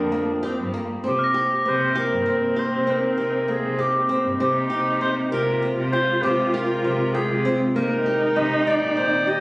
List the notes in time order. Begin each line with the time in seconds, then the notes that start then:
Already playing: F3 A#3 D4 A#4 G5
0.00 F2
0.12 A#3
0.43 C4 G4
0.60 G2
0.74 A#3
1.04 C3 A#3 C4 D#4 G4
1.19 F6
1.24 A#6
1.34 G4
1.65 C3 C4 C5
1.95 G4 A#4
2.12 G2
2.26 C4
2.56 G4 C5
2.74 C3
2.87 C4 A#4
3.18 C3 G4
3.48 A#3 G#4
3.65 C3
3.79 G4
4.09 C4
4.25 G2
4.39 C3 G#3 C4 D#4 G4 G5
4.70 C3 G4
5.01 C4 C5
5.31 C3 F4 G4 A#4
5.62 C4
5.76 C3
5.92 G4 C5
6.22 C3 C4 G4
6.53 G4 A#4
6.83 C3 C4
7.13 G#4 G5
7.28 C3
7.45 C4
7.74 C3 D#3 A#3 D#4 A#4
7.78 D#4
8.06 G4
8.35 C3 D#4 D#5
8.67 G4 D5
8.81 A#2
8.97 C4 G6
9.27 G4 D#5